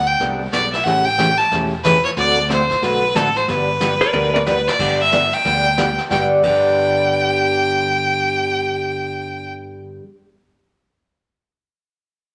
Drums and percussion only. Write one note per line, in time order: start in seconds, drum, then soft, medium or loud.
0.20 brush sweep soft
0.20 kick soft
0.20 snare soft
0.53 kick soft
0.53 snare medium
0.53 hi-hat pedal medium
0.73 snare soft
0.86 brush sweep soft
0.86 kick soft
0.86 snare soft
1.19 kick soft
1.19 snare medium
1.19 hi-hat pedal soft
1.39 snare soft
1.51 brush sweep medium
1.51 kick soft
1.51 snare soft
1.84 kick soft
1.84 snare medium
1.84 hi-hat pedal medium
2.04 snare soft
2.17 brush sweep soft
2.17 kick soft
2.17 snare soft
2.50 kick soft
2.50 snare medium
2.50 hi-hat pedal soft
2.70 kick medium
2.70 snare soft
2.82 brush sweep medium
2.82 kick soft
2.82 snare soft
3.15 kick soft
3.15 snare medium
3.15 hi-hat pedal medium
3.36 snare soft
3.48 brush sweep soft
3.48 kick soft
3.48 snare soft
3.81 kick soft
3.81 snare medium
3.81 hi-hat pedal medium
4.01 snare soft
4.13 high tom soft
4.36 high tom medium
4.46 snare medium
4.46 hi-hat pedal medium
4.68 snare medium
4.79 brush sweep soft
4.79 kick medium
4.79 snare soft
4.79 crash medium
5.12 kick soft
5.12 snare medium
5.12 hi-hat pedal medium
5.32 snare soft
5.45 brush sweep soft
5.45 kick soft
5.45 snare soft
5.78 kick soft
5.78 snare medium
5.78 hi-hat pedal medium
5.98 snare soft
6.11 kick medium
6.11 snare medium
6.43 kick medium
6.43 crash medium